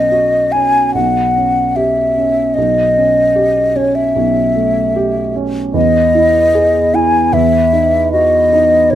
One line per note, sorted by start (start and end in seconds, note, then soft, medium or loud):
0.00 0.92 B1 soft
0.00 0.37 C#4 soft
0.00 0.54 D#5 soft
0.11 0.79 F#4 soft
0.52 0.96 C#4 soft
0.52 0.94 G#5 medium
0.94 2.52 B1 soft
0.94 1.78 F#5 medium
1.37 2.01 C#4 soft
1.76 2.41 G4 soft
1.76 2.56 E5 medium
2.18 2.57 C#4 soft
2.54 4.13 B1 soft
2.54 3.78 D#5 medium
2.97 3.61 C#4 soft
3.36 4.00 G4 soft
3.76 4.40 C#4 soft
3.76 3.97 C#5 medium
3.95 5.35 E5 soft
4.16 5.71 B1 soft
4.56 5.20 A3 soft
4.96 5.60 G4 soft
5.36 5.75 C#4 soft
5.74 7.29 E2 soft
5.74 6.96 D#5 medium
6.15 6.78 E4 soft
6.55 7.18 G#4 soft
6.94 7.34 E4 soft
6.94 7.35 G#5 medium
7.33 8.88 E2 soft
7.33 8.12 E5 medium
7.73 8.37 D#4 soft
8.12 8.76 F#4 soft
8.12 8.92 D#5 medium
8.53 8.92 D#4 soft
8.90 8.95 C#5 medium